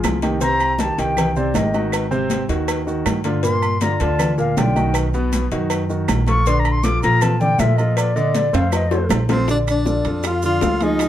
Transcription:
Already playing: grand piano F3 F4 G#4
0.04 upright bass C2, cowbell, high conga, low timbale, low agogo, claves, maracas
0.22 grand piano D#3 D#4 G4, cowbell, high conga, low agogo, maracas
0.41 grand piano C3 C4 C5, flute A#5, cowbell, high conga, maracas
0.60 high conga, low agogo, claves, maracas
0.79 grand piano D#3 D#4 G4, flute A5, cowbell, high conga, low timbale, low agogo, maracas
0.98 upright bass C2, grand piano D#3 D#4 G4, flute G5, cowbell, high conga, low agogo, maracas
1.17 cowbell, high conga, low conga, low agogo, claves, maracas
1.36 grand piano C3 C4 C5, flute D5, high conga, maracas
1.54 upright bass G#1, grand piano D#3 D#4 G4, flute D#5, cowbell, high conga, low timbale, low agogo, maracas
1.74 grand piano D#3 D#4 F#4, high conga, low agogo, maracas
1.92 cowbell, high conga, low agogo, claves, maracas
2.11 grand piano C3 C4 C5, high conga, maracas
2.30 cowbell, high conga, low timbale, low agogo, maracas
2.49 upright bass D#2, grand piano D#3 D#4 F#4, cowbell, maracas
2.68 cowbell, high conga, low agogo, claves, maracas
2.87 grand piano D#3 D#4 F#4, high conga, maracas
3.06 upright bass G2, cowbell, high conga, low timbale, low agogo, claves, maracas
3.24 grand piano D3 D4 F4, cowbell, high conga, low agogo, maracas
3.43 grand piano A#2 A#3 A#4, flute C6, cowbell, high conga, maracas
3.62 high conga, low agogo, claves, maracas
3.81 grand piano D3 D4 F4, flute A#5, cowbell, high conga, low timbale, low agogo, maracas
4.00 upright bass D2, grand piano D3 D4 F4, flute A5, cowbell, high conga, low agogo, maracas
4.19 cowbell, high conga, low conga, low agogo, claves, maracas
4.38 grand piano A#2 A#3 A#4, flute F5, high conga, maracas
4.57 upright bass B1, grand piano D3 D4 F4, flute G5, cowbell, high conga, low timbale, low agogo, maracas
4.75 grand piano D#3 D#4 F#4, high conga, low agogo, maracas
4.94 cowbell, low agogo, claves, maracas
5.14 grand piano B2 B3 B4, high conga, maracas
5.33 cowbell, high conga, low timbale, low agogo, maracas
5.51 upright bass F#2, grand piano D#3 D#4 F#4, cowbell, maracas
5.70 cowbell, high conga, low agogo, claves, maracas
5.89 grand piano D#3 D#4 F#4, high conga, maracas
6.08 upright bass A#1, cowbell, high conga, low timbale, low agogo, claves, maracas
6.26 grand piano F3 F4 A4, flute C#6, cowbell, high conga, low agogo, maracas
6.46 grand piano D3 D4 D5, flute C6, cowbell, high conga, maracas
6.60 flute A#5
6.65 high conga, low agogo, claves, maracas
6.72 flute C6
6.83 grand piano F3 F4 A4, flute D6, cowbell, high conga, low timbale, low agogo, maracas
7.03 upright bass A#2, grand piano F3 F4 A4, flute A#5, cowbell, high conga, low agogo, maracas
7.21 flute A5, cowbell, high conga, low conga, low agogo, claves, maracas
7.40 grand piano D3 D4 D5, flute G5, high conga, low conga, maracas
7.58 upright bass A#2, grand piano F3 F4 A4, flute E5, cowbell, high conga, low timbale, low agogo, maracas
7.77 grand piano F3 F4 A4, flute D#5, low agogo, maracas
7.97 flute D5, cowbell, high conga, low agogo, claves, maracas
8.16 grand piano D3 D4 D5, flute D#5, high conga, maracas
8.34 flute D5, cowbell, high conga, low timbale, low agogo, maracas
8.53 upright bass F2, grand piano A3 A4 C5, flute F5, cowbell, high timbale, maracas
8.72 flute D#5, cowbell, high bongo, high conga, low agogo, claves, maracas
8.91 grand piano A3 A4 C5, high bongo, high conga, maracas
9.09 upright bass A#1, cowbell, low bongo, high conga, low timbale, low agogo, claves, maracas
9.29 grand piano F3 F4 A4, tenor saxophone C4, flute C5, cowbell, low bongo, high conga, low timbale, low agogo, maracas
9.48 grand piano D3 D4 D5, tenor saxophone D4, flute D5, high bongo, high timbale, maracas
9.67 tenor saxophone D4, flute D5, high conga, high timbale, claves, maracas
9.86 grand piano F3 F4 A4, high bongo, high conga, low timbale, maracas
10.05 upright bass F2, grand piano F3 F4 A4, high conga, high timbale, maracas
10.23 tenor saxophone F4, flute F5, high bongo, high conga, high timbale, claves, maracas
10.42 grand piano D3 D4 D5, tenor saxophone F4, flute F5, high conga, maracas
10.61 upright bass C#2, grand piano F3 F4 A4, high bongo, low bongo, high conga, high timbale, low timbale, maracas
10.81 grand piano F3 F4 G#4, tenor saxophone D#4, flute D#5, high conga, high timbale, maracas
10.99 high bongo, high timbale, claves, maracas

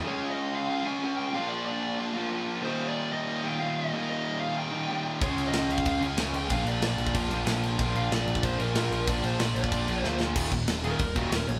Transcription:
0.03 overdriven electric guitar C#3 G#3 C#4, distorted electric guitar C#3 G#3 C#4 F4 G#4
0.07 lead electric guitar C#5
0.31 lead electric guitar D#5
0.55 lead electric guitar F5
0.68 distorted electric guitar C#3 G#3 C#4 F4 G#4
0.83 overdriven electric guitar C#3 G#3 C#4, lead electric guitar G#5
1.00 overdriven electric guitar C#3 G#3
1.04 overdriven electric guitar C#4
1.17 lead electric guitar G5
1.32 overdriven electric guitar A#2 F3 A#3, distorted electric guitar A#2 F3 A#3 D4, lead electric guitar F5
1.36 distorted electric guitar F4
1.49 lead electric guitar D5
1.66 lead electric guitar D5
1.99 distorted electric guitar A#2 F3 A#3 D4 F4
2.13 overdriven electric guitar A#2 F3 A#3
2.29 overdriven electric guitar A#2 F3 A#3
2.61 overdriven electric guitar D#2 A#2, distorted electric guitar D#2 A#2 D#3 G3 A#3, lead electric guitar C5
2.65 overdriven electric guitar D#3, distorted electric guitar D#4
2.88 lead electric guitar D5
3.12 lead electric guitar D#5
3.28 distorted electric guitar D#2 A#2 D#3 G3 A#3 D#4
3.42 overdriven electric guitar D#2 A#2 D#3, lead electric guitar G5
3.59 overdriven electric guitar D#2 A#2 D#3, lead electric guitar F5
3.75 lead electric guitar D#5
3.91 overdriven electric guitar D#2 A#2 D#3, distorted electric guitar D#2 A#2 D#3 G3 A#3 D#4
4.09 lead electric guitar D#5
4.40 lead electric guitar F5
4.56 distorted electric guitar D#2 A#2 D#3 G3 A#3 D#4, lead electric guitar G5
4.71 overdriven electric guitar D#2 A#2 D#3
4.87 overdriven electric guitar D#2 A#2 D#3
5.20 picked electric bass C#2, overdriven electric guitar C#3 G#3 C#4, distorted electric guitar C#3 G#3 C#4 F4 G#4, lead electric guitar C#5, kick, crash
5.36 picked electric bass C#2, crash
5.48 lead electric guitar D#5
5.53 picked electric bass C#2, snare, crash
5.69 picked electric bass C#2, lead electric guitar F5, crash
5.78 kick
5.85 picked electric bass C#2, distorted electric guitar C#3 G#3 C#4 F4 G#4, kick, crash
6.01 picked electric bass C#2, overdriven electric guitar C#3 G#3 C#4, lead electric guitar G#5, crash
6.16 picked electric bass C#2, overdriven electric guitar C#3 G#3 C#4, snare, crash
6.33 picked electric bass C#2, lead electric guitar G5, crash
6.49 picked electric bass A#1, overdriven electric guitar A#2 F3 A#3, distorted electric guitar A#2 F3 A#3 D4 F4, lead electric guitar F5, kick, crash
6.65 picked electric bass A#1, lead electric guitar D5, crash
6.81 picked electric bass A#1, lead electric guitar D5, snare, crash
6.98 picked electric bass A#1, crash
7.07 kick
7.13 picked electric bass A#1, distorted electric guitar A#2 F3 A#3 D4 F4, kick, crash
7.29 picked electric bass A#1, overdriven electric guitar A#2 F3 A#3, crash
7.45 picked electric bass A#1, overdriven electric guitar A#2 F3 A#3, snare, crash
7.63 crash
7.78 picked electric bass A#1, overdriven electric guitar A#2 F3 A#3, distorted electric guitar A#2 F3 A#3 D4 F4, kick, crash
7.95 picked electric bass A#1, lead electric guitar F5, crash
8.11 picked electric bass A#1, lead electric guitar D5, snare, crash
8.27 picked electric bass A#1, crash
8.35 kick
8.43 picked electric bass A#1, distorted electric guitar A#2 F3 A#3 D4 F4, lead electric guitar C5, kick, crash
8.58 picked electric bass A#1, overdriven electric guitar A#2 F3 A#3, lead electric guitar A#4, crash
8.73 overdriven electric guitar A#2 F3 A#3, picked electric bass A#2, snare, crash
8.91 picked electric bass A#1, crash
9.06 picked electric bass A#1, overdriven electric guitar A#2 F3 A#3, distorted electric guitar A#2 F3 A#3 D4, lead electric guitar D5, kick, crash
9.10 distorted electric guitar F4
9.23 picked electric bass A#1, lead electric guitar C5, crash
9.39 picked electric bass A#1, lead electric guitar D5, snare, crash
9.55 picked electric bass A#1, lead electric guitar D5, crash
9.64 kick
9.72 picked electric bass A#1, distorted electric guitar A#2 F3 A#3 D4 F4, kick, crash
9.86 picked electric bass A#1, overdriven electric guitar A#2 F3 A#3, crash
10.01 picked electric bass D2, overdriven electric guitar A#2 F3, lead electric guitar C5, snare
10.06 overdriven electric guitar A#3
10.20 snare
10.35 picked electric bass D#1, overdriven electric guitar D#2 A#2 D#3, distorted electric guitar D#2 A#2 D#3, kick, crash
10.51 picked electric bass D#1, overdriven electric guitar D#2 A#2, distorted electric guitar D#2 A#2, kick, crash
10.67 picked electric bass D#1, overdriven electric guitar D#2 A#2, distorted electric guitar D#2 A#2, snare, crash
10.83 overdriven electric guitar D#2 A#2 D#3, distorted electric guitar D#2 A#2 D#3, lead electric guitar A#4, crash
10.99 picked electric bass D#1, overdriven electric guitar D#2 A#2, distorted electric guitar D#2 A#2, kick, crash
11.15 overdriven electric guitar D#2 A#2 D#3, distorted electric guitar D#2 A#2 D#3, lead electric guitar F#4, kick, crash
11.31 picked electric bass D#1, overdriven electric guitar D#2 A#2, distorted electric guitar D#2 A#2, lead electric guitar A#4, snare, crash
11.48 picked electric bass A#1, overdriven electric guitar D#2 A#2, distorted electric guitar D#2 A#2, lead electric guitar C#5, crash

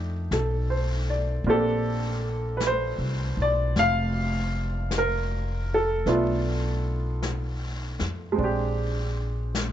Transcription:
Already playing: upright bass F2, grand piano A3 D4 D#4 G4 A#4
0.31 upright bass B1, grand piano A4, brush sweep, snare, hi-hat pedal
0.70 grand piano C5
1.10 grand piano D5
1.44 upright bass A#1, grand piano A#3 C4 D4, brush sweep
1.49 grand piano G4 A4
2.57 grand piano B4, brush sweep, snare, hi-hat pedal
2.67 grand piano C5
2.98 upright bass C2
3.37 upright bass B1
3.42 grand piano D5
3.76 upright bass F1, grand piano F5, brush sweep, snare
4.91 brush sweep, snare, hi-hat pedal
4.98 grand piano A#4
5.74 grand piano A4
6.06 upright bass B1, grand piano A3 B3 D4 F4, brush sweep, snare
7.22 brush sweep, snare, hi-hat pedal
7.99 upright bass F2, snare
8.32 grand piano G#3 C4
8.38 upright bass A#1, grand piano D4, brush sweep
8.44 grand piano G4
9.55 brush sweep, snare, hi-hat pedal

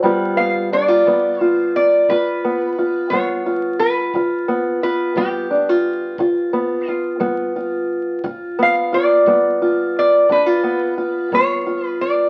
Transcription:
0.03 steel-string acoustic guitar G2 G3 B3 F4 B4, kick
0.37 steel-string acoustic guitar B3, resonator guitar played with a steel bar F5
0.72 steel-string acoustic guitar D4, resonator guitar played with a steel bar D5
0.88 steel-string acoustic guitar F4
1.06 steel-string acoustic guitar G3 B3, kick
1.41 steel-string acoustic guitar F4, resonator guitar played with a steel bar C5
1.76 resonator guitar played with a steel bar D5
2.09 steel-string acoustic guitar G2 F4, resonator guitar played with a steel bar B4, kick
2.45 steel-string acoustic guitar B3
2.79 steel-string acoustic guitar F4
3.10 steel-string acoustic guitar G3 B3, resonator guitar played with a steel bar C#5, kick
3.46 steel-string acoustic guitar F4
3.79 resonator guitar played with a steel bar B4
4.14 steel-string acoustic guitar G2 F4, kick
4.48 steel-string acoustic guitar B3
4.83 steel-string acoustic guitar F4, resonator guitar played with a steel bar B4
5.16 steel-string acoustic guitar G3 B3, resonator guitar played with a steel bar G4, kick
5.51 steel-string acoustic guitar D4
5.69 steel-string acoustic guitar F4
6.18 steel-string acoustic guitar G2 F4, kick
6.53 steel-string acoustic guitar B3
6.88 steel-string acoustic guitar F4, resonator guitar played with a steel bar F4
7.20 steel-string acoustic guitar G3 B3, kick
7.56 steel-string acoustic guitar F4
8.24 steel-string acoustic guitar G2 F4, kick
8.59 steel-string acoustic guitar B3, resonator guitar played with a steel bar F5
8.93 steel-string acoustic guitar F4, resonator guitar played with a steel bar D5
9.26 steel-string acoustic guitar G3 B3, kick
9.62 steel-string acoustic guitar F4
9.99 resonator guitar played with a steel bar D5
10.29 steel-string acoustic guitar G2 D4, resonator guitar played with a steel bar B4, kick
10.46 steel-string acoustic guitar F4
10.64 steel-string acoustic guitar B3
10.98 steel-string acoustic guitar F4
11.32 steel-string acoustic guitar G3 B3, resonator guitar played with a steel bar C#5, kick
11.66 steel-string acoustic guitar F4
11.87 resonator guitar played with a steel bar B4
12.01 resonator guitar played with a steel bar D5

